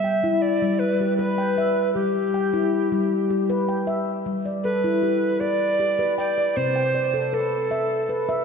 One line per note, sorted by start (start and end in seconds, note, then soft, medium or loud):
0.00 0.61 G3 medium
0.00 0.43 E5 loud
0.04 0.62 G5 medium
0.24 0.62 E4 medium
0.42 0.81 D5 medium
0.62 1.00 G3 medium
0.79 1.16 B4 medium
1.01 1.58 G4 medium
1.17 1.90 B4 medium
1.17 1.57 B4 medium
1.38 1.96 G5 medium
1.58 1.96 E5 medium
1.94 2.34 G3 medium
1.94 3.44 G4 medium
2.34 2.92 G5 medium
2.53 2.92 E4 medium
2.92 3.30 G3 medium
3.30 3.88 G4 medium
3.50 3.88 B4 medium
3.69 4.26 G5 medium
3.87 4.26 E5 medium
4.26 4.64 G3 medium
4.46 5.03 D5 soft
4.64 5.22 A4 medium
4.64 5.42 B4 medium
4.84 5.22 E4 medium
5.03 5.60 G4 medium
5.40 5.79 B4 medium
5.40 6.17 D5 loud
5.80 5.97 G4 medium
5.99 6.56 G4 medium
5.99 6.37 B4 medium
6.18 6.58 D5 medium
6.18 6.74 G5 medium
6.38 6.76 D5 medium
6.57 8.45 C3 medium
6.57 6.95 C4 medium
6.57 7.35 C5 medium
6.76 7.33 G5 soft
6.95 7.52 D5 medium
7.14 7.52 A4 medium
7.33 8.45 A4 medium
7.33 7.90 B4 medium
7.71 8.09 E5 medium
8.09 8.28 B4 medium
8.29 8.45 B4 medium
8.29 8.45 E5 medium